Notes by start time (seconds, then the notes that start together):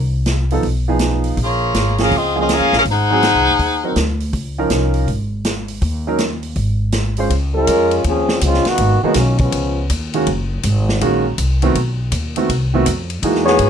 Already playing: C2
0.26 snare, closed hi-hat
0.50 F3 B3 D#4 A4, open hi-hat
0.63 B1, kick, open hi-hat
0.88 F3 B3 D#4 G#4
0.99 snare, closed hi-hat
1.24 open hi-hat
1.37 A#1, kick, open hi-hat
1.43 A#3 F4 G#4 C#5
1.74 G#1, snare, closed hi-hat
1.98 F3 A#3 C#4 G#4 F5, snare, open hi-hat
2.02 C#4 A#4
2.11 C#2 F4 G#4, kick, open hi-hat
2.16 C4 D#5
2.36 F3 A#3 C#4 G#4
2.40 C4 F4 G#4 D#5
2.49 C#4 G#4 A#4 F5, snare, closed hi-hat
2.60 F2
2.73 A#1 C#4 G#4, snare
2.77 A#4 F5
2.85 G#1, kick, open hi-hat
2.89 D#4 G#4 C5 F#5
3.11 F#3 C4 D#4 G#4
3.23 snare, closed hi-hat
3.35 C2
3.47 F#1
3.59 D#2, kick, open hi-hat
3.84 F#3 C4 D#4 A#4
3.96 D2, snare, closed hi-hat
4.20 open hi-hat
4.33 C#2, kick, open hi-hat
4.58 F3 C#4 D#4 A#4
4.70 C2, snare, closed hi-hat
4.94 open hi-hat
5.08 G#1, kick, open hi-hat
5.45 snare, closed hi-hat
5.68 open hi-hat
5.82 D#2, kick, open hi-hat
6.07 F#3 C#4 D#4 A#4
6.18 snare, closed hi-hat
6.43 open hi-hat
6.56 G#1, kick, open hi-hat
6.92 snare, closed hi-hat
7.17 G#3 C#4 F4 C5, open hi-hat
7.30 C#2, kick, ride
7.55 G#3 C#4 F4 A#4
7.67 F2, kick, hi-hat pedal, ride
7.91 ride
8.04 D#2 F3 C4 C#4 G#4, kick, ride
8.29 snare
8.41 C#2 G#3 C4 C#4 F4, kick, hi-hat pedal, ride
8.54 snare
8.65 D#3 A#3 B3 F#4, muted upright bass stroke, snare, ride
8.78 G#1, kick, ride
9.03 D#3 F#3 G#3 A#3 B3 D#4 F#4, muted upright bass stroke
9.14 B1 D#3 F#3 A#3 C#4, kick, snare, hi-hat pedal, ride
9.38 F3 G#3 B3 C#4, kick, ride
9.52 C#2, kick, ride
9.90 D#2, kick, hi-hat pedal, ride
10.13 D#3 G#3 A#3 C#4 F#4, ride
10.27 F#1, kick, ride
10.63 G#1, kick, hi-hat pedal, ride
10.89 snare
11.01 A#1 D#3 G#3 A#3 C#4 F#4, kick, ride
11.38 C2, kick, hi-hat pedal, ride
11.62 D#3 A3 B3 C4 F#4, ride
11.75 B1, kick, ride
12.12 D#2, kick, hi-hat pedal, ride
12.36 D#3 A3 B3 C4 F#4, ride
12.49 C2, kick, ride
12.74 D#3 A3 B3 C4 F#4
12.86 F2, kick, hi-hat pedal, ride
13.10 ride
13.22 E2 E3 G#3 A#3 D#4 F#4, kick, ride
13.35 snare
13.45 B3 F#4 G#4 C#5, snare
13.59 G#2, kick, hi-hat pedal, ride